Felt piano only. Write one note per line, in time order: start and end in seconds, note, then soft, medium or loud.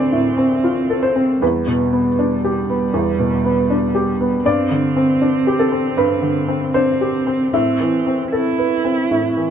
0.00 1.44 D2 soft
0.00 0.12 A2 soft
0.00 0.38 C4 soft
0.00 0.64 F4 soft
0.00 0.90 A4 soft
0.00 1.03 C5 soft
0.00 0.98 D5 medium
0.00 1.44 F5 medium
0.12 0.54 A2 soft
0.38 0.79 C4 soft
0.64 1.05 F4 soft
0.90 1.31 A4 soft
1.03 1.39 C5 soft
1.16 1.42 C4 soft
1.42 2.91 E2 soft
1.42 4.04 B4 soft
1.67 2.08 B2 soft
1.92 2.34 B3 soft
2.19 2.59 D4 soft
2.44 2.85 G4 soft
2.69 3.10 B3 soft
2.94 4.42 E2 soft
3.19 3.60 B2 soft
3.45 3.85 B3 soft
3.70 4.11 D4 soft
3.95 4.36 G4 soft
4.21 4.46 B3 soft
4.45 5.93 G2 soft
4.45 5.55 D5 medium
4.71 5.12 D3 soft
4.97 5.37 C4 soft
5.21 5.62 D4 soft
5.47 5.87 G4 soft
5.59 5.95 A4 soft
5.72 6.13 C4 soft
5.97 7.49 G2 soft
5.97 6.71 B4 medium
6.22 6.64 D3 soft
6.48 6.90 C4 soft
6.74 7.17 D4 soft
6.74 7.49 C5 medium
7.01 7.43 G4 soft
7.27 7.53 C4 soft
7.53 9.07 A2 soft
7.53 9.50 E5 medium
7.80 8.22 E3 soft
8.07 8.48 C4 soft
8.32 8.74 A4 soft
8.58 9.01 B4 soft
8.85 9.27 C4 soft
9.11 9.50 A2 soft
9.37 9.50 E3 soft